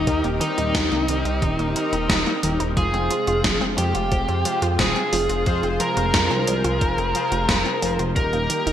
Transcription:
Already playing: D#3 G3 D#4 G4
0.07 D#2 D#3 C4 D#4 G4 A#4, kick, closed hi-hat
0.24 D#1 A#3, closed hi-hat
0.41 D#3 D#4, closed hi-hat
0.58 D#1 D#4, closed hi-hat
0.75 D#2 D#3, kick, snare, closed hi-hat
0.92 C2 A#3, closed hi-hat
1.08 C2 D#3, closed hi-hat
1.25 C2 D#4, closed hi-hat
1.42 D#1 D#3, kick, closed hi-hat
1.59 D#1 A#3, closed hi-hat
1.76 D#3 D#4 G4 A#4, closed hi-hat
1.93 D#1 D#4, closed hi-hat
2.10 D#1 D#3, kick, snare, closed hi-hat
2.26 A#3, closed hi-hat
2.43 D#1 D#3 D#4 G4 A#4, closed hi-hat
2.60 D#1 D#4, closed hi-hat
2.77 F1 C3 F3 G#3 F4 G#4 C5, kick, closed hi-hat
2.94 F1 C4, closed hi-hat
3.10 F3, closed hi-hat
3.27 F1 F4, closed hi-hat
3.44 F1 F3, kick, snare, closed hi-hat
3.61 F1 C4, closed hi-hat
3.78 F2 F3 G4, closed hi-hat
3.95 F1 F4, closed hi-hat
4.12 F1 F3, kick, closed hi-hat
4.28 F2 C4, closed hi-hat
4.45 F3 F4 G#4 C5, closed hi-hat
4.62 F2 F4, closed hi-hat
4.79 D#1 F3 G#4, kick, snare, closed hi-hat
4.96 C4, closed hi-hat
5.13 F1 F3, open hi-hat
5.29 F1 F4, closed hi-hat
5.46 F2 F3 F4 G#4 C5, kick, closed hi-hat
5.63 F1 C4, closed hi-hat
5.80 F3 A#4, closed hi-hat
5.97 F1 F4, closed hi-hat
6.14 F2 F3, kick, snare, closed hi-hat
6.31 C2 C4, closed hi-hat
6.47 C2 F3, closed hi-hat
6.64 C2 F4, closed hi-hat
6.81 F1 F3, kick, closed hi-hat
6.98 F1 C4, closed hi-hat
7.15 F3 F4 G#4 C5, closed hi-hat
7.32 F1 F4, closed hi-hat
7.49 F1 F3, kick, snare, closed hi-hat
7.65 C4, closed hi-hat
7.82 F1 F3 F4 G#4 C5, open hi-hat
7.99 F1 F4, closed hi-hat
8.16 D#1 D#3 G3 A#3 D#4 G4 A#4, kick, closed hi-hat
8.33 D#1 A#3, closed hi-hat
8.50 D#3, closed hi-hat
8.67 D#1 D#4, closed hi-hat

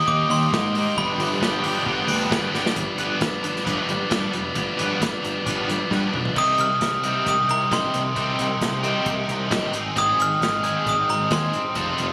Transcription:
Already playing: G4 D#5 A#5
0.08 D#2 D#3 G3 A#3 D#4 G4 D6, kick
0.29 D#2 C6, open hi-hat
0.52 G#2 D#3 G3 A#3 D#4 G4, kick, snare
0.75 D#3 G3 A#3 D#4 G4, open hi-hat
0.96 G1 G2 D3 F3 G3 B3 D4 G4 F5 B5, kick
1.18 G1, open hi-hat
1.41 G1 G2 D3 F3 G3 B3 D4 G4, kick, snare
1.63 G1 G2 D3 F3 G3 B3 D4 G4, open hi-hat
1.86 G1 G2 D3 F3 G3 B3 D4 G4, kick
2.07 D2, open hi-hat
2.30 G1 G2 D3 F3 G3 B3 D4 G4, kick, snare
2.53 G1 G2 D3 F3 G3 B3 D4 G4, snare
2.66 snare
2.75 G1 F3 B3 D4, muted distorted electric guitar stroke, kick, closed hi-hat
2.98 G1 G3 B3 D4 B4, closed hi-hat
3.21 G1 F3 B3 D4, muted distorted electric guitar stroke, kick, snare, closed hi-hat
3.43 G1, muted distorted electric guitar stroke, closed hi-hat
3.56 snare
3.65 G1 F3 G3 B3 D4 B4, kick, closed hi-hat
3.88 G1 B3 D4, muted distorted electric guitar stroke, closed hi-hat
4.10 G2 F3 G3 B3 D4 B4, kick, snare, closed hi-hat
4.33 F1 B3 D4, muted distorted electric guitar stroke, closed hi-hat
4.55 G1 F3 B3 D4, muted distorted electric guitar stroke, kick, closed hi-hat
4.78 G1 G3 B3 D4 B4, closed hi-hat
5.00 G1 F3 B3 D4, muted distorted electric guitar stroke, kick, snare, closed hi-hat
5.23 G1, muted distorted electric guitar stroke, closed hi-hat
5.46 G1 F3 G3 B3 D4 B4, kick, closed hi-hat
5.68 G1 B3 D4, muted distorted electric guitar stroke, closed hi-hat
5.90 G2 F3 G3 B3 D4 B4, kick, snare
6.12 B1 B3 D4, muted distorted electric guitar stroke, mid tom
6.25 floor tom
6.36 C2 C3 G3 C4 D#4 G4 A#4 D#5 G5 C6 D#6, kick, crash
6.58 C2 F6, closed hi-hat
6.81 C2, kick, snare, closed hi-hat
7.04 C3 G3 C4 D#4 G4, closed hi-hat
7.26 C2 D#6, kick, closed hi-hat
7.48 C2 A#5, closed hi-hat
7.71 G1 G3 C4 D#4 G4 C6, kick, snare, closed hi-hat
7.94 C2, closed hi-hat
8.15 C2 C3 G3 C4 D#4 G4, kick, closed hi-hat
8.39 C2, closed hi-hat
8.61 C2, kick, snare, closed hi-hat
8.83 C3 G3 C4 D#4 G4, closed hi-hat
9.06 C2, kick, closed hi-hat
9.28 C2, closed hi-hat
9.51 G1 G3 C4 D#4 G4, kick, snare, closed hi-hat
9.73 G#1 G#2 D#3 G#3 C4 D#4 G#4 C6, closed hi-hat
9.96 G#1 C4 D#4 G#4 D#6, kick, closed hi-hat
10.19 G#1 F6, closed hi-hat
10.41 G#1 G#2 D#3 G#3 C4 D#4 G#4, kick, snare, closed hi-hat
10.63 C4 D#4 G#4, closed hi-hat
10.86 G#1 D#6, kick, closed hi-hat
11.09 G#1 A#5, closed hi-hat
11.31 D#2 C4 D#4 G#4 C6, kick, snare, closed hi-hat
11.53 G1, closed hi-hat
11.75 F1 F3 C4 D#4 F4 A4 F5, kick, closed hi-hat
11.98 F1, closed hi-hat

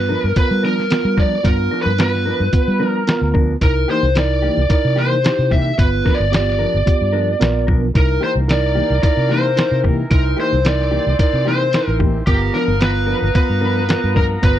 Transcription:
Already playing: G2 B3 F4 B4
0.09 F3 B3 D4 A#4
0.24 G2 A#4
0.36 B3 F4 A#4 B4, kick, closed hi-hat
0.51 G3
0.63 F3 B3 D4 A#4
0.80 snare
0.90 B3 F4 A#4, snare, closed hi-hat
1.05 G3
1.17 F3 B3 D4 A#4 D5, kick
1.43 G2 B3 F4 A#4, kick, closed hi-hat
1.71 F3 B3 D4 A#4
1.82 G2 B4
1.98 B3 F4 B4, snare, closed hi-hat
2.15 snare
2.26 F3 B3 D4 A#4
2.40 G2
2.52 B3 F4 B4, kick, closed hi-hat
2.68 G3
2.79 F3 B3 D4 A#4
2.85 A#4
3.07 B3 F4 A#4, snare, closed hi-hat
3.22 D2
3.34 F3 B3 D4 A#4, kick
3.61 C2 D#4 E4 A#4, kick, closed hi-hat
3.88 E3 A#3 D#4 G4 C5
4.03 C2
4.15 D#4 E4 A#4 D5, snare, closed hi-hat
4.42 E3 A#3 D#4 G4
4.57 C2
4.69 D#4 E4 A#4 D5, kick, closed hi-hat
4.85 C3
4.96 E3 A#3 D#4 G4 C5
5.24 D#4 E4 G4, snare, closed hi-hat
5.39 C3
5.51 E3 A#3 D#4 G4 E5, kick
5.78 G1 B3 F4 B4, kick, closed hi-hat
6.05 F3 B3 D4 A#4, kick, snare
6.14 D5
6.20 G1
6.31 B3 F4 G4 D5, snare, closed hi-hat
6.50 snare
6.59 F3 B3 D4 A#4
6.74 G1
6.86 B3 F4 G4, kick, closed hi-hat
7.01 G2
7.12 F3 B3 D4 A#4
7.40 A#1 B3 F4 A#4, snare, closed hi-hat
7.67 B1 F3 B3 D4 A#4, kick
7.94 C2 E3 A#3 D#4 E4 A#4, kick, closed hi-hat
8.21 E3 A#3 D#4 G4 C5
8.36 C2
8.48 D#4 E4 A#4 D5, snare, closed hi-hat
8.75 E3 A#3 D#4 G4
8.90 C2
9.02 D#4 E4 A#4 D5, kick, closed hi-hat
9.17 C3
9.29 E3 A#3 D#4 G4 C5
9.56 D#4 E4 A#4, snare, closed hi-hat
9.71 C3
9.83 E3 A#3 D#4 G4, kick
10.10 C2 C4 D#4 E4 A#4 C5, kick, closed hi-hat
10.37 E3 A#3 D#4 G4 C5
10.53 C2
10.65 D#4 E4 A#4 D5, snare, closed hi-hat
10.81 snare
10.91 E3 A#3 D#4 G4
11.07 C2
11.19 D#4 E4 A#4 D5, kick, closed hi-hat
11.33 C3
11.45 E3 A#3 D#4 G4 C5
11.73 D#4 E4 A#4, snare, closed hi-hat
11.87 A1
11.99 E3 A#3 D#4 G4, kick
12.27 G1 B3 F4 G4 A#4 F5 A#5, kick, closed hi-hat
12.53 F3 B3 D4 A#4, snare
12.68 G1
12.81 B3 F4 B4, snare, closed hi-hat
13.06 F3 B3 D4 A#4
13.22 G1
13.35 B3 F4 B4, kick, closed hi-hat
13.50 G2
13.61 F3 B3 D4 A#4
13.89 B3 F4 A#4, snare, closed hi-hat
14.04 G2
14.15 F3 B3 D4 A#4, kick
14.42 G1 B3 F4 B4, kick, closed hi-hat

